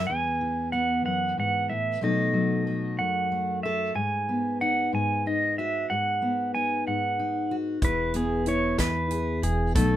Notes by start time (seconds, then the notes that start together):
Already playing: E5
0.07 E2 G#5
0.41 E3
0.72 B3 F#5
1.05 F#2 F#5
1.38 G#2 F#5
1.69 A2 E5
2.01 B2 F#3 A3 D#4 A4 D#5
2.33 F#3
2.67 A3
2.99 F#2 F#5
3.32 A3
3.63 A4 E5
3.95 G#2 G#5
4.29 B3
4.61 D#4 F#5
4.93 G#2 G#5
5.26 D#4 D#5
5.58 F#4 E5
5.90 G#2 F#5
6.22 B3
6.55 D#4 G#5
6.87 G#2 F#5
7.19 D#4
7.51 F#4
7.82 E1 E2 E4 B4, kick, closed hi-hat
8.14 B3 G#4, closed hi-hat
8.46 E4 C#5, closed hi-hat
8.78 E2 E3 B4, kick, snare, closed hi-hat
9.11 G#4, closed hi-hat
9.43 E1 G#4, closed hi-hat
9.75 B1 B2 F#3 A3 D#4 A4, kick, closed hi-hat